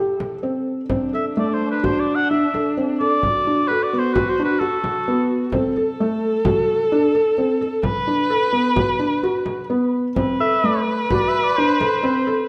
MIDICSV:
0, 0, Header, 1, 5, 480
1, 0, Start_track
1, 0, Tempo, 462606
1, 948, Time_signature, 5, 2, 24, 8
1, 9093, Tempo, 467654
1, 12912, End_track
2, 0, Start_track
2, 0, Title_t, "Oboe"
2, 0, Program_c, 0, 68
2, 1191, Note_on_c, 0, 76, 72
2, 1300, Note_off_c, 0, 76, 0
2, 1439, Note_on_c, 0, 74, 68
2, 1597, Note_on_c, 0, 72, 67
2, 1612, Note_off_c, 0, 74, 0
2, 1757, Note_off_c, 0, 72, 0
2, 1772, Note_on_c, 0, 71, 67
2, 1925, Note_on_c, 0, 72, 72
2, 1941, Note_off_c, 0, 71, 0
2, 2075, Note_on_c, 0, 74, 72
2, 2090, Note_off_c, 0, 72, 0
2, 2236, Note_on_c, 0, 78, 84
2, 2251, Note_off_c, 0, 74, 0
2, 2382, Note_off_c, 0, 78, 0
2, 2389, Note_on_c, 0, 76, 78
2, 2841, Note_off_c, 0, 76, 0
2, 3114, Note_on_c, 0, 74, 98
2, 3814, Note_on_c, 0, 71, 84
2, 3830, Note_off_c, 0, 74, 0
2, 3977, Note_on_c, 0, 74, 83
2, 3993, Note_off_c, 0, 71, 0
2, 4141, Note_on_c, 0, 72, 74
2, 4156, Note_off_c, 0, 74, 0
2, 4291, Note_on_c, 0, 71, 74
2, 4307, Note_off_c, 0, 72, 0
2, 4456, Note_on_c, 0, 72, 71
2, 4472, Note_off_c, 0, 71, 0
2, 4601, Note_off_c, 0, 72, 0
2, 4607, Note_on_c, 0, 71, 74
2, 4769, Note_on_c, 0, 69, 73
2, 4785, Note_off_c, 0, 71, 0
2, 5498, Note_off_c, 0, 69, 0
2, 10779, Note_on_c, 0, 76, 89
2, 11229, Note_off_c, 0, 76, 0
2, 11517, Note_on_c, 0, 74, 65
2, 11674, Note_on_c, 0, 76, 68
2, 11689, Note_off_c, 0, 74, 0
2, 11833, Note_on_c, 0, 74, 76
2, 11849, Note_off_c, 0, 76, 0
2, 11975, Note_on_c, 0, 72, 75
2, 11991, Note_off_c, 0, 74, 0
2, 12912, Note_off_c, 0, 72, 0
2, 12912, End_track
3, 0, Start_track
3, 0, Title_t, "Viola"
3, 0, Program_c, 1, 41
3, 0, Note_on_c, 1, 69, 103
3, 669, Note_off_c, 1, 69, 0
3, 934, Note_on_c, 1, 62, 81
3, 3366, Note_on_c, 1, 66, 81
3, 3381, Note_off_c, 1, 62, 0
3, 5740, Note_off_c, 1, 66, 0
3, 5746, Note_on_c, 1, 69, 95
3, 8123, Note_on_c, 1, 71, 103
3, 8138, Note_off_c, 1, 69, 0
3, 10293, Note_off_c, 1, 71, 0
3, 10537, Note_on_c, 1, 71, 103
3, 12912, Note_off_c, 1, 71, 0
3, 12912, End_track
4, 0, Start_track
4, 0, Title_t, "Felt piano"
4, 0, Program_c, 2, 0
4, 0, Note_on_c, 2, 67, 72
4, 346, Note_off_c, 2, 67, 0
4, 446, Note_on_c, 2, 60, 65
4, 831, Note_off_c, 2, 60, 0
4, 929, Note_on_c, 2, 60, 69
4, 1125, Note_off_c, 2, 60, 0
4, 1175, Note_on_c, 2, 69, 57
4, 1370, Note_off_c, 2, 69, 0
4, 1421, Note_on_c, 2, 57, 71
4, 1802, Note_off_c, 2, 57, 0
4, 1902, Note_on_c, 2, 66, 63
4, 2283, Note_off_c, 2, 66, 0
4, 2394, Note_on_c, 2, 62, 68
4, 2584, Note_off_c, 2, 62, 0
4, 2638, Note_on_c, 2, 69, 61
4, 2826, Note_off_c, 2, 69, 0
4, 2879, Note_on_c, 2, 60, 68
4, 3066, Note_off_c, 2, 60, 0
4, 3119, Note_on_c, 2, 69, 62
4, 3492, Note_off_c, 2, 69, 0
4, 3600, Note_on_c, 2, 62, 63
4, 3786, Note_off_c, 2, 62, 0
4, 3845, Note_on_c, 2, 69, 73
4, 4028, Note_off_c, 2, 69, 0
4, 4080, Note_on_c, 2, 59, 61
4, 4265, Note_off_c, 2, 59, 0
4, 4314, Note_on_c, 2, 66, 65
4, 4500, Note_off_c, 2, 66, 0
4, 4559, Note_on_c, 2, 62, 58
4, 4743, Note_off_c, 2, 62, 0
4, 4784, Note_on_c, 2, 66, 73
4, 5159, Note_off_c, 2, 66, 0
4, 5269, Note_on_c, 2, 59, 73
4, 5641, Note_off_c, 2, 59, 0
4, 5744, Note_on_c, 2, 60, 75
4, 5930, Note_off_c, 2, 60, 0
4, 5982, Note_on_c, 2, 69, 62
4, 6168, Note_off_c, 2, 69, 0
4, 6229, Note_on_c, 2, 57, 74
4, 6598, Note_off_c, 2, 57, 0
4, 6699, Note_on_c, 2, 66, 63
4, 7071, Note_off_c, 2, 66, 0
4, 7181, Note_on_c, 2, 62, 78
4, 7366, Note_off_c, 2, 62, 0
4, 7417, Note_on_c, 2, 69, 66
4, 7603, Note_off_c, 2, 69, 0
4, 7658, Note_on_c, 2, 60, 67
4, 7843, Note_off_c, 2, 60, 0
4, 7899, Note_on_c, 2, 69, 65
4, 8271, Note_off_c, 2, 69, 0
4, 8377, Note_on_c, 2, 62, 63
4, 8563, Note_off_c, 2, 62, 0
4, 8612, Note_on_c, 2, 69, 72
4, 8800, Note_off_c, 2, 69, 0
4, 8846, Note_on_c, 2, 59, 66
4, 9037, Note_off_c, 2, 59, 0
4, 9087, Note_on_c, 2, 66, 61
4, 9277, Note_off_c, 2, 66, 0
4, 9330, Note_on_c, 2, 62, 58
4, 9518, Note_off_c, 2, 62, 0
4, 9575, Note_on_c, 2, 66, 70
4, 9950, Note_off_c, 2, 66, 0
4, 10052, Note_on_c, 2, 59, 71
4, 10430, Note_off_c, 2, 59, 0
4, 10530, Note_on_c, 2, 60, 73
4, 10721, Note_off_c, 2, 60, 0
4, 10774, Note_on_c, 2, 69, 62
4, 10964, Note_off_c, 2, 69, 0
4, 11016, Note_on_c, 2, 57, 67
4, 11393, Note_off_c, 2, 57, 0
4, 11507, Note_on_c, 2, 66, 67
4, 11878, Note_off_c, 2, 66, 0
4, 11985, Note_on_c, 2, 62, 73
4, 12169, Note_off_c, 2, 62, 0
4, 12221, Note_on_c, 2, 69, 63
4, 12406, Note_off_c, 2, 69, 0
4, 12448, Note_on_c, 2, 60, 76
4, 12637, Note_off_c, 2, 60, 0
4, 12691, Note_on_c, 2, 69, 64
4, 12912, Note_off_c, 2, 69, 0
4, 12912, End_track
5, 0, Start_track
5, 0, Title_t, "Frame drum"
5, 210, Note_on_c, 9, 64, 45
5, 313, Note_off_c, 9, 64, 0
5, 929, Note_on_c, 9, 64, 53
5, 1033, Note_off_c, 9, 64, 0
5, 1184, Note_on_c, 9, 64, 17
5, 1288, Note_off_c, 9, 64, 0
5, 1908, Note_on_c, 9, 64, 50
5, 2012, Note_off_c, 9, 64, 0
5, 2400, Note_on_c, 9, 64, 16
5, 2504, Note_off_c, 9, 64, 0
5, 2636, Note_on_c, 9, 64, 39
5, 2740, Note_off_c, 9, 64, 0
5, 2872, Note_on_c, 9, 64, 15
5, 2976, Note_off_c, 9, 64, 0
5, 3351, Note_on_c, 9, 64, 45
5, 3454, Note_off_c, 9, 64, 0
5, 3601, Note_on_c, 9, 64, 16
5, 3704, Note_off_c, 9, 64, 0
5, 4311, Note_on_c, 9, 64, 55
5, 4415, Note_off_c, 9, 64, 0
5, 4777, Note_on_c, 9, 64, 17
5, 4881, Note_off_c, 9, 64, 0
5, 5021, Note_on_c, 9, 64, 45
5, 5125, Note_off_c, 9, 64, 0
5, 5258, Note_on_c, 9, 64, 17
5, 5362, Note_off_c, 9, 64, 0
5, 5731, Note_on_c, 9, 64, 49
5, 5835, Note_off_c, 9, 64, 0
5, 5983, Note_on_c, 9, 64, 19
5, 6086, Note_off_c, 9, 64, 0
5, 6691, Note_on_c, 9, 64, 61
5, 6795, Note_off_c, 9, 64, 0
5, 7177, Note_on_c, 9, 64, 17
5, 7281, Note_off_c, 9, 64, 0
5, 7651, Note_on_c, 9, 64, 18
5, 7755, Note_off_c, 9, 64, 0
5, 8128, Note_on_c, 9, 64, 53
5, 8232, Note_off_c, 9, 64, 0
5, 8851, Note_on_c, 9, 64, 17
5, 8954, Note_off_c, 9, 64, 0
5, 9094, Note_on_c, 9, 64, 58
5, 9196, Note_off_c, 9, 64, 0
5, 9565, Note_on_c, 9, 64, 18
5, 9668, Note_off_c, 9, 64, 0
5, 9806, Note_on_c, 9, 64, 44
5, 9908, Note_off_c, 9, 64, 0
5, 10529, Note_on_c, 9, 64, 52
5, 10631, Note_off_c, 9, 64, 0
5, 10767, Note_on_c, 9, 64, 18
5, 10870, Note_off_c, 9, 64, 0
5, 11496, Note_on_c, 9, 64, 56
5, 11599, Note_off_c, 9, 64, 0
5, 11971, Note_on_c, 9, 64, 19
5, 12074, Note_off_c, 9, 64, 0
5, 12217, Note_on_c, 9, 64, 49
5, 12319, Note_off_c, 9, 64, 0
5, 12459, Note_on_c, 9, 64, 20
5, 12561, Note_off_c, 9, 64, 0
5, 12912, End_track
0, 0, End_of_file